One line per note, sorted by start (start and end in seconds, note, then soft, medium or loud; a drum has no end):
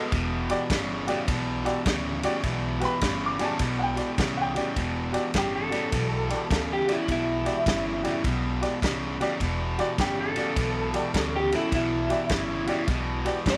0.00 0.11 B2 medium
0.00 0.11 G#3 medium
0.00 0.88 B4 loud
0.12 0.50 E1 medium
0.12 0.67 E2 medium
0.12 0.67 B2 medium
0.12 kick medium
0.12 snare soft
0.12 ride medium
0.49 0.60 F#4 medium
0.49 0.60 G4 medium
0.49 0.61 D5 loud
0.49 snare soft
0.49 ride medium
0.70 1.08 G1 medium
0.70 1.05 E2 medium
0.70 1.05 C#3 medium
0.70 kick medium
0.70 snare loud
0.70 ride medium
1.07 1.27 E2 medium
1.07 1.27 C#3 medium
1.07 1.18 F#4 medium
1.07 1.18 G4 medium
1.07 1.19 D5 medium
1.07 snare soft
1.07 ride medium
1.28 1.66 B1 medium
1.28 1.82 E2 medium
1.28 1.82 B2 medium
1.28 kick medium
1.28 snare soft
1.28 ride medium
1.65 1.76 F#4 medium
1.65 1.76 G4 medium
1.65 1.76 D5 medium
1.65 snare soft
1.65 ride medium
1.85 2.24 D2 medium
1.85 2.20 E2 loud
1.85 2.20 C#3 loud
1.85 kick medium
1.85 snare loud
1.85 ride medium
2.23 2.42 E2 medium
2.23 2.42 C#3 medium
2.23 2.34 F#4 medium
2.23 2.34 G4 medium
2.23 2.35 D5 loud
2.23 snare soft
2.23 ride medium
2.43 2.82 B1 loud
2.43 2.98 E2 medium
2.43 2.98 B2 medium
2.43 kick medium
2.43 snare soft
2.43 ride medium
2.80 2.91 F#4 medium
2.80 2.92 G4 medium
2.80 2.92 B4 medium
2.80 snare soft
2.80 ride medium
2.85 3.22 B5 loud
3.01 3.40 G1 medium
3.01 3.36 E2 medium
3.01 3.36 C#3 loud
3.01 kick medium
3.01 snare loud
3.01 ride medium
3.26 3.43 D6 medium
3.39 3.58 E2 medium
3.39 3.58 C#3 medium
3.39 3.50 F#4 medium
3.39 3.50 G4 medium
3.39 3.51 D5 medium
3.39 3.44 G#5 medium
3.39 snare soft
3.39 ride medium
3.45 3.81 A5 medium
3.59 3.98 B1 medium
3.59 4.14 E2 medium
3.59 4.14 B2 medium
3.59 kick medium
3.59 snare soft
3.59 ride medium
3.79 3.85 F#5 medium
3.83 4.38 G5 medium
3.95 4.07 F#4 medium
3.95 4.08 G4 medium
3.95 4.08 D5 medium
3.95 snare soft
3.95 ride medium
4.18 4.56 C2 medium
4.18 4.52 E2 medium
4.18 4.52 C#3 loud
4.18 kick medium
4.18 snare loud
4.18 ride medium
4.37 4.43 F#5 medium
4.41 4.77 G5 loud
4.55 4.75 E2 medium
4.55 4.75 C#3 medium
4.55 4.66 F#4 medium
4.55 4.66 G4 medium
4.55 4.67 D5 medium
4.55 snare soft
4.55 ride medium
4.76 5.14 E1 medium
4.76 5.30 E2 medium
4.76 5.31 B2 medium
4.76 kick medium
4.76 snare soft
4.76 ride medium
5.12 5.23 F#4 medium
5.12 5.24 G4 medium
5.12 5.24 D5 medium
5.12 snare soft
5.12 ride medium
5.34 5.72 G1 medium
5.34 5.68 E2 medium
5.34 5.69 C#3 medium
5.34 kick medium
5.34 snare loud
5.34 ride medium
5.38 5.55 G4 medium
5.56 6.67 A4 loud
5.70 5.90 E2 medium
5.70 5.91 C#3 medium
5.70 5.81 F#4 medium
5.70 5.82 G4 medium
5.70 5.82 D5 medium
5.70 snare soft
5.70 ride medium
5.92 6.31 B1 medium
5.92 6.46 E2 medium
5.92 6.46 B2 medium
5.92 kick medium
5.92 snare soft
5.92 ride medium
6.29 6.40 F#4 medium
6.29 6.40 G4 medium
6.29 6.41 D5 medium
6.29 snare soft
6.29 ride medium
6.50 6.88 D2 medium
6.50 6.84 E2 medium
6.50 6.85 C#3 medium
6.50 kick medium
6.50 snare loud
6.50 ride medium
6.73 6.92 G4 medium
6.87 7.06 E2 medium
6.87 7.07 C#3 medium
6.87 6.98 F#4 medium
6.87 6.98 G4 medium
6.87 6.99 D5 medium
6.87 snare soft
6.87 ride medium
6.92 7.09 E4 medium
7.08 7.46 B1 medium
7.08 7.63 E2 medium
7.08 7.63 B2 medium
7.08 8.23 E4 medium
7.08 kick medium
7.08 snare soft
7.08 ride medium
7.45 7.56 F#4 medium
7.45 7.56 G4 medium
7.45 7.56 D5 medium
7.45 snare soft
7.45 ride medium
7.66 8.04 G1 medium
7.66 8.00 E2 medium
7.66 8.01 C#3 loud
7.66 kick medium
7.66 snare loud
7.66 ride medium
8.03 8.23 E2 medium
8.03 8.23 C#3 medium
8.03 8.14 F#4 medium
8.03 8.14 G4 medium
8.03 8.14 D5 medium
8.03 snare soft
8.03 ride medium
8.24 8.62 B1 medium
8.24 8.78 E2 medium
8.24 8.78 B2 medium
8.24 kick medium
8.24 snare soft
8.24 ride medium
8.61 8.72 F#4 medium
8.61 8.72 G4 medium
8.61 8.73 D5 medium
8.61 snare soft
8.61 ride medium
8.82 9.20 C2 medium
8.82 9.16 E2 medium
8.82 9.17 C#3 medium
8.82 kick medium
8.82 snare loud
8.82 ride medium
9.20 9.39 E2 medium
9.20 9.39 C#3 medium
9.20 9.30 F#4 medium
9.20 9.31 G4 medium
9.20 9.31 D5 loud
9.20 snare soft
9.20 ride medium
9.40 9.78 E1 medium
9.40 9.95 E2 medium
9.40 9.95 B2 medium
9.40 kick medium
9.40 snare soft
9.40 ride medium
9.78 9.88 F#4 medium
9.78 9.89 G4 medium
9.78 9.89 D5 loud
9.78 snare soft
9.78 ride medium
9.98 10.36 G1 medium
9.98 10.33 E2 medium
9.98 10.33 C#3 medium
9.98 10.18 G4 medium
9.98 kick medium
9.98 snare loud
9.98 ride medium
10.21 11.32 A4 loud
10.36 10.54 E2 medium
10.36 10.55 C#3 medium
10.36 10.46 F#4 medium
10.36 10.47 G4 medium
10.36 10.47 D5 medium
10.36 snare soft
10.36 ride medium
10.56 10.94 B1 medium
10.56 11.10 E2 medium
10.56 11.11 B2 medium
10.56 kick medium
10.56 snare soft
10.56 ride medium
10.93 11.04 F#4 medium
10.93 11.04 G4 medium
10.93 11.05 D5 medium
10.93 snare soft
10.93 ride medium
11.14 11.52 D2 medium
11.14 11.49 E2 medium
11.14 11.49 C#3 medium
11.14 kick medium
11.14 snare loud
11.14 ride medium
11.36 11.54 G4 medium
11.51 11.71 E2 medium
11.51 11.71 C#3 medium
11.51 11.62 F#4 medium
11.51 11.62 G4 medium
11.51 11.63 A4 medium
11.51 snare soft
11.51 ride medium
11.55 11.73 E4 medium
11.72 12.10 B1 medium
11.72 12.27 E2 medium
11.72 12.27 B2 medium
11.72 12.86 E4 medium
11.72 kick medium
11.72 snare soft
11.72 ride medium
12.09 12.20 F#4 medium
12.09 12.20 G4 medium
12.09 12.21 D5 medium
12.09 snare soft
12.09 ride medium
12.29 12.68 G1 medium
12.29 12.64 E2 medium
12.29 12.64 C#3 medium
12.29 kick medium
12.29 snare loud
12.29 ride medium
12.67 12.86 E2 medium
12.67 12.86 C#3 medium
12.67 12.78 F#4 medium
12.67 12.78 G4 medium
12.67 12.79 D5 medium
12.67 snare soft
12.67 ride medium
12.88 13.26 B1 medium
12.88 13.42 E2 medium
12.88 13.43 B2 medium
12.88 kick medium
12.88 snare soft
12.88 ride medium
13.25 13.36 F#4 medium
13.25 13.36 G4 medium
13.25 13.36 D5 medium
13.25 snare soft
13.25 ride medium
13.46 13.57 G1 medium
13.46 13.57 E2 medium
13.46 13.57 C#3 medium
13.46 kick medium
13.46 snare loud
13.46 ride medium
13.50 13.57 D5 loud